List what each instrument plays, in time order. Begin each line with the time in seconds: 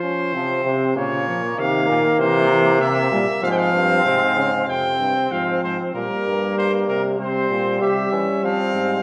Already playing: euphonium F3, trumpet C5
0.03 flugelhorn C#4
0.34 euphonium C3, bass trombone F3, flugelhorn C4
0.66 bass trombone C3
0.96 bass trombone A#2, euphonium C#3, flugelhorn A#3, trumpet C#5
1.28 euphonium F3
1.58 bass trombone C3, euphonium D#3, trumpet F5
1.89 bass trombone A#2
2.20 bass trombone C3, euphonium E3, trumpet C5
2.51 euphonium E3
2.81 euphonium C3, trumpet E5
3.12 bass trombone A#2, euphonium G3
3.43 bass trombone G#2, euphonium F3, flugelhorn C4, trumpet F5
3.51 trumpet G5
3.58 trumpet F5
3.74 bass trombone G2
4.05 bass trombone G#2, euphonium C3
4.36 euphonium C#3
4.67 bass trombone F2, euphonium C3, flugelhorn C4, trumpet G5
4.99 bass trombone G2
5.31 bass trombone G#2, euphonium F3, trumpet F5
5.63 bass trombone G#2, trumpet C5
5.94 bass trombone A#2, euphonium G3, flugelhorn A#3, trumpet A#4
6.25 bass trombone G2
6.57 bass trombone G2, trumpet C5
6.88 bass trombone C3, trumpet A#4
7.19 bass trombone C3, euphonium G3, flugelhorn C4, trumpet C5
7.50 bass trombone A#2
7.81 bass trombone C3, flugelhorn G4, trumpet E5
8.12 bass trombone E3, flugelhorn C#4
8.43 bass trombone F3, flugelhorn C4, trumpet F5
8.74 bass trombone G#2